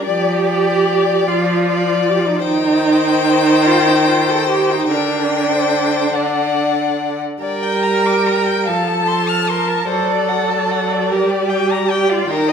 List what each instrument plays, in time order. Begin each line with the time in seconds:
0.05 viola F3, cello G4, violin D5
0.48 violin D5
1.27 viola F3, cello F4
1.66 violin D5
2.09 cello G4
2.19 cello F4
2.27 cello D#4
2.36 cello F4
2.44 viola D#3, cello D#4, violin C5 G5
3.66 cello F4
3.88 cello D#4
4.08 cello F4
4.30 cello A4
4.49 cello G4
4.71 cello D#4
4.89 viola D3, cello D4, violin A#4 G5
5.53 violin C5
6.13 viola D3, violin D5 F#5
7.42 viola G3, cello A#4, violin D5 G5
7.63 violin G5
7.83 violin A#5
8.05 violin D6
8.27 violin A#5
8.46 violin G5
8.66 viola F3, cello A4, violin F5 A5
8.88 violin A5
9.07 violin C6
9.28 violin F6
9.49 cello A#4, violin C6
9.68 violin A5
9.88 viola F#3, cello A4, violin C5 D5
10.11 violin D5
10.29 violin F#5
10.50 violin A5
10.71 violin F#5
10.91 violin D5
11.11 viola G3, cello G4, violin A#4
11.30 violin D5
11.49 violin G5
11.71 violin A#5
11.90 cello G4, violin G5
12.09 cello F4, violin D5
12.30 viola D#3, cello D#4, violin A#4 G5
12.48 violin D#5